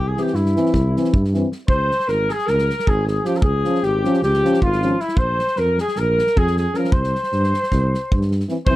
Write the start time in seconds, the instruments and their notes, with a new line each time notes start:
Already playing: tuba C2
0.07 cornet G#4, alto saxophone G#4
0.16 euphonium E3 C4, alto saxophone G4, snare
0.23 cornet G4
0.27 snare
0.34 tuba G2, alto saxophone E4, cornet E4, snare
0.46 snare
0.56 euphonium E3 C4, snare
0.66 snare
0.73 tuba C2, kick, snare
0.96 euphonium E3 C4, snare
1.04 snare
1.13 tuba G2, kick
1.24 snare
1.33 euphonium E3 C4, snare
1.52 snare
1.68 tuba C#2, alto saxophone C5, cornet C5, kick
1.91 snare
2.00 snare
2.07 tuba G#1, alto saxophone A#4, cornet A#4, snare
2.29 alto saxophone G#4, cornet G#4, snare
2.39 snare
2.47 tuba C#2, alto saxophone A#4, cornet A#4, snare
2.58 snare
2.70 snare
2.79 snare
2.87 tuba G#1, alto saxophone G#4, cornet G#4, kick
3.07 cornet G#4, alto saxophone G#4, snare
3.25 euphonium F3 C#4, cornet G4, alto saxophone G4, snare
3.34 cornet A#4, alto saxophone A#4, snare
3.42 tuba C#2, cornet G#4, alto saxophone G#4, kick
3.64 euphonium F3 C#4, snare
3.75 snare
3.82 tuba G#1, cornet G4, alto saxophone G4, snare
4.03 euphonium F3 C#4, snare
4.13 snare
4.22 tuba C#2, alto saxophone G4, cornet G4, snare
4.33 snare
4.43 euphonium F3 C#4, snare
4.54 snare
4.62 tuba G#1, cornet F4, alto saxophone F4, kick
4.72 snare
4.82 euphonium F3 C#4, snare
5.00 alto saxophone E4, cornet E4, snare
5.08 snare
5.17 tuba A#1, cornet C5, alto saxophone C5, kick
5.39 snare
5.47 snare
5.56 tuba F2, cornet A#4, alto saxophone A#4, snare
5.78 alto saxophone G#4, cornet G#4, snare
5.88 snare
5.96 tuba A#1, alto saxophone A#4, cornet A#4, snare
6.19 snare
6.27 snare
6.36 tuba F2, cornet G#4, alto saxophone G#4, kick
6.47 snare
6.57 alto saxophone G#4, cornet G#4, snare
6.73 euphonium F3 C#4, alto saxophone A#4, cornet A#4, snare
6.84 snare
6.92 tuba C2, alto saxophone C5, cornet C5, kick
7.04 snare
7.15 snare
7.23 snare
7.32 tuba G2, snare
7.43 snare
7.54 snare
7.63 snare
7.72 tuba C2, kick, snare
7.94 snare
8.12 tuba G2, kick
8.21 snare
8.31 snare
8.40 snare
8.49 euphonium E3 C4, snare
8.66 tuba C2, euphonium E3 C4, alto saxophone C5, cornet C5, kick